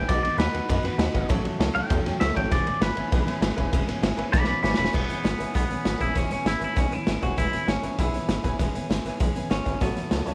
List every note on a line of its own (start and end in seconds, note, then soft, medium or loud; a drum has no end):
0.08 0.19 B1 loud
0.08 0.24 B2 medium
0.08 0.24 G#3 medium
0.08 0.24 B3 medium
0.08 0.24 D#4 medium
0.08 0.23 F#4 medium
0.08 0.17 B4 medium
0.08 0.22 D5 loud
0.08 0.18 D#5 medium
0.08 0.18 F#5 loud
0.08 kick loud
0.08 snare soft
0.08 ride medium
0.22 0.30 B1 medium
0.22 0.38 D#4 soft
0.22 0.39 F#4 soft
0.22 0.32 B4 medium
0.22 0.38 D5 medium
0.22 0.33 D#5 medium
0.22 0.33 F#5 medium
0.22 ride medium
0.27 0.37 B3 soft
0.37 0.48 D#2 loud
0.37 0.54 G#3 medium
0.37 0.54 B3 medium
0.37 0.54 D#4 medium
0.37 0.53 F#4 medium
0.37 0.47 B4 medium
0.37 1.27 B4 loud
0.37 0.48 D#5 medium
0.37 0.48 F#5 medium
0.37 snare loud
0.37 ride medium
0.53 0.60 D#2 medium
0.53 0.68 B3 soft
0.53 0.69 D#4 medium
0.53 0.69 F#4 medium
0.53 0.62 B4 loud
0.53 0.63 D#5 medium
0.53 0.63 F#5 loud
0.53 ride medium
0.68 0.79 F#2 medium
0.68 0.84 B2 medium
0.68 0.85 G#3 medium
0.68 0.84 B3 medium
0.68 0.83 D#4 medium
0.68 0.81 F#4 medium
0.68 0.78 B4 medium
0.68 kick loud
0.68 snare soft
0.68 ride medium
0.83 0.90 F#2 medium
0.83 0.98 B3 medium
0.83 0.99 D#4 medium
0.83 0.99 F#4 medium
0.83 0.93 B4 medium
0.83 0.94 D#5 medium
0.83 0.94 F#5 loud
0.83 snare soft
0.83 ride medium
0.97 1.09 D#2 loud
0.97 1.14 G#3 medium
0.97 1.15 B3 medium
0.97 1.15 D#4 medium
0.97 1.14 F#4 medium
0.97 1.07 B4 loud
0.97 1.08 D#5 medium
0.97 1.09 F#5 loud
0.97 snare loud
0.97 ride medium
1.13 1.24 G#1 medium
1.13 1.30 B3 medium
1.13 1.30 D#4 medium
1.13 1.30 F#4 medium
1.13 1.23 B4 loud
1.13 1.24 D#5 loud
1.13 1.24 F#5 loud
1.13 kick medium
1.13 ride medium
1.29 1.40 A1 loud
1.29 1.45 A2 loud
1.29 1.45 E3 loud
1.29 1.45 F#3 loud
1.29 1.45 A3 loud
1.29 1.44 C#4 loud
1.29 1.43 F#4 loud
1.29 1.39 C#5 loud
1.29 1.39 E5 loud
1.29 1.39 A5 loud
1.29 kick loud
1.29 ride medium
1.44 1.51 A1 medium
1.44 1.59 F#3 medium
1.44 1.60 A3 medium
1.44 1.60 C#4 medium
1.44 1.60 F#4 medium
1.44 1.54 C#5 medium
1.44 1.54 E5 medium
1.44 1.55 A5 loud
1.44 ride medium
1.59 1.70 C#2 medium
1.59 1.75 F#3 medium
1.59 1.76 A3 medium
1.59 1.75 C#4 medium
1.59 1.75 F#4 medium
1.59 1.69 C#5 loud
1.59 1.69 E5 medium
1.59 1.70 A5 loud
1.59 snare loud
1.59 ride medium
1.74 1.81 C#2 medium
1.74 1.90 F#3 soft
1.74 1.91 A3 medium
1.74 1.91 C#4 medium
1.74 1.91 F#4 medium
1.74 1.84 C#5 loud
1.74 1.84 E5 medium
1.74 2.19 G5 loud
1.74 1.85 A5 loud
1.74 ride medium
1.90 2.00 E2 loud
1.90 2.06 A2 medium
1.90 2.06 E3 medium
1.90 2.06 F#3 medium
1.90 2.06 A3 medium
1.90 2.05 C#4 medium
1.90 2.05 F#4 medium
1.90 1.99 C#5 medium
1.90 2.00 E5 medium
1.90 2.00 A5 medium
1.90 kick loud
1.90 ride medium
2.06 2.12 E2 medium
2.06 2.20 F#3 soft
2.06 2.21 A3 medium
2.06 2.21 C#4 medium
2.06 2.21 F#4 medium
2.06 2.15 C#5 medium
2.06 2.15 E5 medium
2.06 2.16 A5 medium
2.06 snare soft
2.06 ride medium
2.20 2.31 C#2 loud
2.20 2.36 F#3 medium
2.20 2.36 A3 medium
2.20 2.35 C#4 medium
2.20 2.35 F#4 medium
2.20 2.30 C#5 medium
2.20 2.35 E5 loud
2.20 2.30 E5 medium
2.20 2.31 A5 medium
2.20 snare loud
2.20 ride medium
2.34 2.46 A1 loud
2.34 2.51 A3 soft
2.34 2.51 C#4 medium
2.34 2.51 F#4 medium
2.34 2.44 C#5 loud
2.34 2.45 E5 medium
2.34 2.51 G5 medium
2.34 2.45 A5 loud
2.34 kick medium
2.34 ride medium
2.38 2.51 F#3 soft
2.50 2.61 E1 loud
2.50 2.66 E3 medium
2.50 2.66 G#3 medium
2.50 2.67 B3 medium
2.50 2.66 C#4 medium
2.50 2.65 G#4 loud
2.50 2.59 B4 medium
2.50 2.66 D5 loud
2.50 2.60 E5 medium
2.50 2.60 G#5 loud
2.50 kick loud
2.50 snare soft
2.50 ride medium
2.65 2.73 E1 medium
2.65 2.81 B3 soft
2.65 2.82 C#4 medium
2.65 2.81 G#4 medium
2.65 2.75 B4 medium
2.65 2.82 D5 loud
2.65 2.76 E5 medium
2.65 ride medium
2.81 2.91 G#1 medium
2.81 2.97 G#3 medium
2.81 2.97 B3 medium
2.81 2.96 G#4 medium
2.81 2.91 B4 medium
2.81 3.70 B4 loud
2.81 2.91 E5 medium
2.81 2.91 G#5 medium
2.81 snare loud
2.81 ride medium
2.95 3.03 G#1 medium
2.95 3.12 C#4 medium
2.95 3.12 G#4 medium
2.95 3.05 B4 loud
2.95 3.06 E5 medium
2.95 3.06 G#5 loud
2.95 ride medium
2.99 3.12 B3 soft
3.11 3.22 B1 loud
3.11 3.27 E3 medium
3.11 3.27 G#3 medium
3.11 3.28 B3 medium
3.11 3.27 C#4 medium
3.11 3.26 G#4 medium
3.11 3.20 B4 medium
3.11 3.21 E5 medium
3.11 kick loud
3.11 snare soft
3.11 ride medium
3.26 3.33 B1 medium
3.26 3.42 B3 medium
3.26 3.43 C#4 medium
3.26 3.42 G#4 medium
3.26 3.36 B4 medium
3.26 3.36 E5 medium
3.26 3.37 G#5 loud
3.26 snare soft
3.26 ride medium
3.41 3.52 G#1 loud
3.41 3.57 G#3 medium
3.41 3.58 B3 medium
3.41 3.57 C#4 medium
3.41 3.56 G#4 medium
3.41 3.51 B4 medium
3.41 3.51 E5 medium
3.41 3.51 G#5 loud
3.41 snare loud
3.41 ride medium
3.56 3.68 E1 loud
3.56 3.73 B3 medium
3.56 3.73 C#4 medium
3.56 3.72 G#4 medium
3.56 3.66 B4 loud
3.56 3.66 E5 loud
3.56 3.67 G#5 loud
3.56 kick medium
3.56 ride medium
3.71 3.83 E1 loud
3.71 3.88 E3 medium
3.71 3.88 G#3 medium
3.71 3.88 B3 medium
3.71 3.87 C#4 loud
3.71 3.86 G#4 loud
3.71 3.81 B4 loud
3.71 3.81 E5 loud
3.71 3.82 G#5 loud
3.71 kick loud
3.71 ride medium
3.86 3.94 E1 medium
3.86 4.02 B3 medium
3.86 4.03 C#4 medium
3.86 4.03 G#4 medium
3.86 3.96 B4 medium
3.86 3.97 E5 medium
3.86 3.97 G#5 loud
3.86 snare soft
3.86 ride medium
4.02 4.13 G#1 loud
4.02 4.18 G#3 medium
4.02 4.18 B3 medium
4.02 4.17 C#4 medium
4.02 4.16 G#4 medium
4.02 4.12 B4 medium
4.02 4.12 E5 medium
4.02 4.13 G#5 loud
4.02 snare loud
4.02 ride medium
4.17 4.24 G#1 medium
4.17 4.33 B3 soft
4.17 4.33 C#4 medium
4.17 4.33 G#4 medium
4.17 4.27 B4 loud
4.17 4.27 E5 loud
4.17 4.27 G#5 loud
4.17 ride medium
4.32 4.43 B1 medium
4.32 4.48 E3 medium
4.32 4.49 G#3 medium
4.32 4.49 B3 loud
4.32 4.48 C#4 medium
4.32 4.47 G#4 medium
4.32 4.46 D5 loud
4.32 4.42 G#5 medium
4.32 4.46 B5 loud
4.32 kick loud
4.32 snare medium
4.44 4.54 B1 medium
4.44 4.63 G#4 medium
4.44 4.56 B4 medium
4.44 4.61 D5 medium
4.44 4.57 E5 medium
4.44 4.57 G#5 medium
4.44 4.62 B5 medium
4.44 snare medium
4.49 4.63 B3 medium
4.49 4.64 C#4 medium
4.62 4.73 G#1 loud
4.62 4.79 G#3 medium
4.62 4.79 B3 medium
4.62 4.94 C#4 medium
4.62 4.79 C#4 medium
4.62 4.77 G#4 medium
4.62 4.72 B4 medium
4.62 4.77 D5 medium
4.62 4.72 E5 medium
4.62 4.73 G#5 medium
4.62 4.76 B5 medium
4.62 snare medium
4.74 4.87 B4 medium
4.74 4.87 E5 medium
4.74 4.93 B5 loud
4.74 snare loud
4.78 4.88 E1 medium
4.78 4.93 B3 soft
4.78 4.93 C#4 soft
4.78 4.94 G#4 medium
4.78 4.88 G#5 loud
4.85 snare medium
4.91 5.04 E1 loud
4.91 5.09 E3 medium
4.91 5.09 G#3 medium
4.91 5.54 B3 medium
4.91 5.09 B3 medium
4.91 5.09 C#4 medium
4.91 5.07 G#4 medium
4.91 5.02 B4 medium
4.91 5.02 E5 medium
4.91 5.03 G#5 loud
4.91 kick loud
4.91 snare soft
4.91 crash loud
5.08 5.15 E1 medium
5.08 5.23 B3 soft
5.08 5.24 C#4 soft
5.08 5.24 G#4 medium
5.08 5.18 B4 medium
5.08 5.18 E5 medium
5.08 5.19 G#5 medium
5.08 closed hi-hat medium
5.24 5.34 G#1 medium
5.24 5.39 G#3 medium
5.24 5.39 B3 medium
5.24 5.39 C#4 medium
5.24 5.37 G#4 medium
5.24 5.33 B4 medium
5.24 5.33 E5 medium
5.24 5.34 G#5 medium
5.24 snare loud
5.24 closed hi-hat medium
5.38 5.46 G#1 medium
5.38 5.54 B3 soft
5.38 5.54 C#4 medium
5.38 5.54 G#4 medium
5.38 5.48 B4 loud
5.38 5.49 E5 loud
5.38 5.49 G#5 loud
5.38 closed hi-hat medium
5.53 5.65 B1 medium
5.53 5.70 E3 medium
5.53 5.70 G#3 medium
5.53 5.70 B3 medium
5.53 6.02 B3 medium
5.53 5.70 C#4 medium
5.53 5.69 G#4 medium
5.53 5.63 B4 medium
5.53 kick loud
5.53 snare soft
5.53 closed hi-hat medium
5.69 5.76 B1 medium
5.69 5.85 B3 soft
5.69 5.86 C#4 medium
5.69 5.85 G#4 medium
5.69 5.78 B4 medium
5.69 5.79 E5 medium
5.69 5.79 G#5 medium
5.69 closed hi-hat medium
5.84 5.95 G#1 loud
5.84 6.01 G#3 medium
5.84 6.01 B3 medium
5.84 6.01 C#4 medium
5.84 6.00 G#4 medium
5.84 5.94 B4 medium
5.84 5.94 E5 medium
5.84 5.94 G#5 medium
5.84 snare loud
5.84 closed hi-hat medium
5.98 6.11 E1 medium
5.98 6.16 E4 medium
5.98 6.16 G#4 medium
5.98 6.08 B4 medium
5.98 6.09 E5 medium
5.98 6.09 G#5 loud
5.98 kick medium
5.98 closed hi-hat medium
6.02 6.16 B3 soft
6.02 6.17 C#4 soft
6.14 6.26 E1 loud
6.14 6.31 E3 medium
6.14 6.32 G#3 medium
6.14 6.32 B3 medium
6.14 6.30 C#4 medium
6.14 6.24 B4 medium
6.14 6.24 E5 medium
6.14 6.25 G#5 loud
6.14 kick loud
6.14 closed hi-hat medium
6.18 6.32 C#4 medium
6.18 6.30 G#4 medium
6.29 6.37 E1 medium
6.29 6.46 C#4 medium
6.29 6.47 C#4 soft
6.29 6.46 G#4 medium
6.29 6.39 B4 medium
6.29 6.40 E5 medium
6.29 6.40 G#5 medium
6.29 snare soft
6.29 closed hi-hat medium
6.34 6.46 B3 soft
6.45 6.56 G#1 medium
6.45 6.61 G#3 medium
6.45 6.62 B3 medium
6.45 6.62 C#4 medium
6.45 6.61 E4 loud
6.45 6.61 G#4 medium
6.45 6.55 B4 medium
6.45 6.55 E5 medium
6.45 6.55 G#5 medium
6.45 snare loud
6.45 closed hi-hat medium
6.59 6.67 G#1 medium
6.59 6.77 C#4 medium
6.59 6.77 G#4 medium
6.59 6.69 B4 medium
6.59 6.70 E5 medium
6.59 6.70 G#5 loud
6.59 closed hi-hat medium
6.64 6.76 B3 soft
6.64 6.78 E4 medium
6.75 6.87 B1 loud
6.75 6.91 E3 medium
6.75 6.92 G#3 medium
6.75 6.92 B3 medium
6.75 6.92 C#4 medium
6.75 6.93 C#4 medium
6.75 6.91 G#4 medium
6.75 6.85 B4 medium
6.75 6.85 E5 medium
6.75 kick loud
6.75 snare soft
6.75 closed hi-hat medium
6.90 6.98 B1 medium
6.90 7.08 C#4 medium
6.90 7.24 E4 loud
6.90 7.07 G#4 medium
6.90 7.00 B4 medium
6.90 7.00 E5 medium
6.90 7.01 G#5 medium
6.90 closed hi-hat medium
6.95 7.07 B3 soft
7.06 7.17 G#1 loud
7.06 7.23 G#3 medium
7.06 7.23 B3 medium
7.06 7.15 B4 medium
7.06 7.16 E5 medium
7.06 7.16 G#5 medium
7.06 snare loud
7.06 closed hi-hat medium
7.10 7.23 C#4 medium
7.10 7.21 G#4 medium
7.21 7.32 E1 medium
7.21 7.38 C#4 soft
7.21 7.37 F#4 loud
7.21 7.37 G#4 medium
7.21 7.31 B4 medium
7.21 7.31 E5 medium
7.21 7.32 G#5 loud
7.21 kick medium
7.21 closed hi-hat medium
7.25 7.38 B3 soft
7.36 7.48 E1 loud
7.36 7.53 E3 medium
7.36 7.53 G#3 medium
7.36 7.53 B3 medium
7.36 7.69 E4 loud
7.36 7.46 B4 medium
7.36 7.46 E5 medium
7.36 7.46 G#5 loud
7.36 kick loud
7.36 snare soft
7.36 closed hi-hat medium
7.40 7.54 C#4 medium
7.40 7.52 G#4 medium
7.52 7.59 E1 medium
7.52 7.69 C#4 soft
7.52 7.68 G#4 medium
7.52 7.61 B4 medium
7.52 7.61 E5 medium
7.52 7.62 G#5 medium
7.52 snare soft
7.52 closed hi-hat medium
7.56 7.69 B3 soft
7.66 7.78 G#1 medium
7.66 7.83 G#3 medium
7.66 7.99 C#4 loud
7.66 7.76 B4 medium
7.66 7.77 E5 medium
7.66 7.77 G#5 medium
7.66 snare loud
7.66 closed hi-hat medium
7.70 7.84 B3 medium
7.70 7.83 C#4 medium
7.70 7.82 G#4 medium
7.82 7.89 G#1 medium
7.82 7.99 B3 soft
7.82 7.99 C#4 medium
7.82 7.98 G#4 soft
7.82 7.92 B4 medium
7.82 7.92 E5 medium
7.82 7.93 G#5 loud
7.82 closed hi-hat medium
7.97 8.09 B1 medium
7.97 8.14 E3 medium
7.97 8.14 G#3 medium
7.97 8.14 B3 medium
7.97 8.14 C#4 medium
7.97 8.56 E4 loud
7.97 8.13 G#4 medium
7.97 8.07 B4 medium
7.97 8.08 G#5 medium
7.97 kick loud
7.97 closed hi-hat medium
8.13 8.19 B1 medium
8.13 8.29 B3 medium
8.13 8.29 C#4 medium
8.13 8.29 G#4 medium
8.13 8.23 B4 medium
8.13 8.23 E5 medium
8.13 8.23 G#5 medium
8.13 snare soft
8.13 closed hi-hat medium
8.29 8.39 G#1 loud
8.29 8.44 G#3 medium
8.29 8.44 B3 medium
8.29 8.44 C#4 medium
8.29 8.43 G#4 medium
8.29 8.38 B4 medium
8.29 8.38 E5 medium
8.29 8.39 G#5 medium
8.29 snare loud
8.29 closed hi-hat medium
8.43 8.54 E1 medium
8.43 8.60 B3 soft
8.43 8.60 C#4 medium
8.43 8.59 G#4 medium
8.43 8.53 B4 loud
8.43 8.53 E5 loud
8.43 8.54 G#5 loud
8.43 kick medium
8.43 closed hi-hat medium
8.59 8.69 E1 loud
8.59 8.74 E3 medium
8.59 8.75 G#3 medium
8.59 8.75 B3 medium
8.59 8.75 C#4 loud
8.59 8.73 G#4 loud
8.59 8.68 B4 loud
8.59 8.69 E5 loud
8.59 8.69 G#5 loud
8.59 kick loud
8.59 snare soft
8.59 closed hi-hat medium
8.74 8.81 E1 medium
8.74 8.89 B3 medium
8.74 8.90 C#4 medium
8.74 8.89 G#4 medium
8.74 8.83 B4 medium
8.74 8.84 E5 medium
8.74 8.85 G#5 medium
8.74 closed hi-hat medium
8.90 9.00 G#1 medium
8.90 9.05 G#3 medium
8.90 9.05 B3 medium
8.90 9.05 C#4 medium
8.90 9.04 G#4 medium
8.90 8.99 B4 medium
8.90 8.99 E5 medium
8.90 9.00 G#5 loud
8.90 snare loud
8.90 closed hi-hat medium
9.05 9.11 G#1 medium
9.05 9.19 B3 soft
9.05 9.19 C#4 medium
9.05 9.20 G#4 medium
9.05 9.14 B4 loud
9.05 9.15 E5 loud
9.05 9.15 G#5 loud
9.05 closed hi-hat medium
9.20 9.30 B1 medium
9.20 9.35 E3 medium
9.20 9.35 G#3 medium
9.20 9.35 B3 medium
9.20 9.35 C#4 medium
9.20 9.34 G#4 medium
9.20 9.29 B4 medium
9.20 9.30 E5 medium
9.20 9.30 G#5 medium
9.20 kick loud
9.20 closed hi-hat medium
9.35 9.42 B1 medium
9.35 9.49 B3 medium
9.35 9.50 C#4 medium
9.35 9.50 G#4 medium
9.35 9.45 B4 medium
9.35 9.45 E5 medium
9.35 9.46 G#5 medium
9.35 closed hi-hat medium
9.49 9.61 G#1 loud
9.49 9.65 G#3 medium
9.49 9.66 B3 medium
9.49 9.65 C#4 medium
9.49 9.79 C#4 medium
9.49 9.63 G#4 medium
9.49 9.59 B4 medium
9.49 9.60 E5 medium
9.49 snare loud
9.49 closed hi-hat medium
9.65 9.76 G#1 medium
9.65 9.81 B3 soft
9.65 9.81 C#4 soft
9.65 9.80 G#4 medium
9.65 9.74 B4 medium
9.65 9.75 E5 medium
9.65 9.75 G#5 loud
9.65 kick medium
9.65 closed hi-hat medium
9.80 9.91 A1 loud
9.80 9.96 A2 medium
9.80 9.96 E3 medium
9.80 9.96 F#3 medium
9.80 9.96 A3 medium
9.80 10.34 B3 medium
9.80 9.95 C#4 medium
9.80 9.95 F#4 medium
9.80 9.90 C#5 medium
9.80 9.90 E5 medium
9.80 9.91 A5 loud
9.80 kick loud
9.80 snare soft
9.80 closed hi-hat medium
9.96 10.02 A1 medium
9.96 10.10 F#3 soft
9.96 10.11 A3 soft
9.96 10.12 C#4 soft
9.96 10.11 F#4 soft
9.96 10.06 C#5 medium
9.96 10.06 E5 medium
9.96 10.07 A5 medium
9.96 snare soft
9.96 closed hi-hat medium
10.11 10.21 C#2 medium
10.11 10.26 F#3 medium
10.11 10.27 A3 medium
10.11 10.27 C#4 medium
10.11 10.26 F#4 medium
10.11 10.20 C#5 medium
10.11 10.21 E5 medium
10.11 10.21 A5 medium
10.11 snare loud
10.11 closed hi-hat medium
10.26 10.33 C#2 medium
10.26 10.34 F#3 soft
10.26 10.34 A3 medium
10.26 10.34 C#4 medium
10.26 10.34 F#4 medium
10.26 10.34 C#5 loud
10.26 10.34 E5 loud
10.26 10.34 A5 loud
10.26 closed hi-hat medium